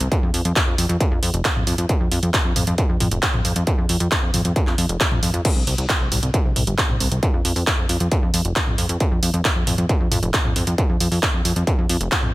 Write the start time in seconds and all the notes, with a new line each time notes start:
0.00 C2, closed hi-hat
0.12 kick, closed hi-hat
0.23 F2
0.34 F2, open hi-hat
0.45 F2, closed hi-hat
0.56 kick, clap, closed hi-hat
0.67 F2
0.78 F2, open hi-hat
0.89 F2, closed hi-hat
1.01 kick, closed hi-hat
1.11 F2
1.23 F2, open hi-hat
1.34 F1, closed hi-hat
1.45 kick, clap, closed hi-hat
1.56 F2, mid tom
1.67 F2, open hi-hat
1.78 F2, closed hi-hat
1.89 kick, closed hi-hat
2.00 F2
2.12 F2, open hi-hat
2.23 F2, closed hi-hat
2.34 kick, clap, closed hi-hat
2.45 F2
2.56 F2, open hi-hat, mid tom
2.67 F2, closed hi-hat
2.78 kick, closed hi-hat
2.89 F2
3.00 F2, open hi-hat, mid tom
3.11 F1, closed hi-hat
3.23 kick, clap, closed hi-hat
3.34 F2, mid tom
3.45 F2, open hi-hat
3.56 F2, closed hi-hat
3.67 kick, closed hi-hat
3.78 F2
3.89 F2, open hi-hat
4.00 F2, closed hi-hat
4.12 kick, clap, closed hi-hat
4.23 F2
4.34 F2, open hi-hat, mid tom
4.45 F2, closed hi-hat
4.56 kick, closed hi-hat
4.67 F2, clap
4.78 F2, open hi-hat
4.89 F1, closed hi-hat
5.01 kick, clap, closed hi-hat
5.11 F2, mid tom
5.22 F2, open hi-hat
5.34 F2, closed hi-hat
5.45 kick, closed hi-hat, crash
5.56 C2
5.67 C2, open hi-hat
5.78 C2, closed hi-hat
5.89 kick, clap, closed hi-hat
6.00 C2
6.12 C2, open hi-hat, mid tom
6.23 C2, closed hi-hat
6.34 kick, closed hi-hat
6.45 C2
6.56 C2, open hi-hat, mid tom
6.67 G1, closed hi-hat
6.78 kick, clap, closed hi-hat
6.89 C2, mid tom
7.00 C2, open hi-hat
7.11 C2, closed hi-hat
7.23 kick, closed hi-hat
7.34 F2
7.45 F2, open hi-hat
7.56 F2, open hi-hat
7.67 kick, clap, closed hi-hat
7.78 F2
7.89 F2, open hi-hat
8.00 F2, closed hi-hat
8.12 kick, closed hi-hat
8.23 F2
8.34 F2, open hi-hat
8.45 F1, closed hi-hat
8.56 kick, clap, closed hi-hat
8.67 F2, mid tom
8.78 F2, open hi-hat
8.89 F2, closed hi-hat
9.00 kick, closed hi-hat
9.11 F2
9.23 F2, open hi-hat
9.34 F2, closed hi-hat
9.45 kick, clap, closed hi-hat
9.56 F2
9.67 F2, open hi-hat, mid tom
9.78 F2, closed hi-hat
9.89 kick, closed hi-hat
10.00 F2
10.11 F2, open hi-hat, mid tom
10.23 F1, closed hi-hat
10.34 kick, clap, closed hi-hat
10.45 F2, mid tom
10.56 F2, open hi-hat
10.67 F2, closed hi-hat
10.78 kick, closed hi-hat
10.89 F2
11.00 F2, open hi-hat
11.12 F2, open hi-hat
11.23 kick, clap, closed hi-hat
11.34 F2
11.45 F2, open hi-hat
11.56 F2, closed hi-hat
11.67 kick, closed hi-hat
11.78 F2
11.89 F2, open hi-hat
12.01 F1, closed hi-hat
12.12 kick, clap, closed hi-hat
12.23 F2, mid tom